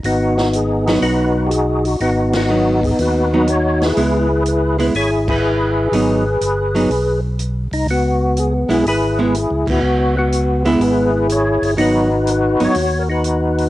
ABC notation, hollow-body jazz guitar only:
X:1
M:4/4
L:1/8
Q:"Swing" 1/4=123
K:G#m
V:1 name="Hollow-body jazz guitar"
z3 [F,B,D]3 z2 | z2 [F,B,D] z2 [F,B,D] z2 | [G,B,E] z2 [G,B,E] z4 | [F,B,D] z2 [F,B,D] z4 |
z3 [G,B,E] z [G,B,E] z2 | z3 [G,B,E]3 z2 | [F,B,D] z2 [F,B,D] z4 |]